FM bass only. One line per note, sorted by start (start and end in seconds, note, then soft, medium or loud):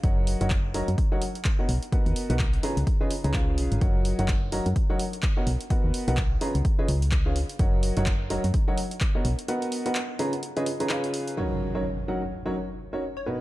0.04 0.36 F#1 loud
0.41 0.83 F#1 medium
0.88 0.96 F#2 medium
1.69 1.79 B1 medium
2.06 2.14 D#2 medium
2.30 2.59 B1 medium
2.77 2.84 C#2 medium
3.24 3.59 C#2 loud
3.58 3.68 B1 medium
3.72 3.79 G#1 loud
3.81 4.14 F#1 loud
4.19 4.61 F#1 medium
4.66 4.74 F#2 medium
5.47 5.57 B1 medium
5.84 5.92 D#2 medium
6.08 6.37 B1 medium
6.55 6.62 C#2 medium
6.89 7.44 C#2 loud
7.59 7.92 F#1 medium
7.97 8.39 F#1 medium
8.44 8.52 F#2 medium
9.25 9.35 B1 medium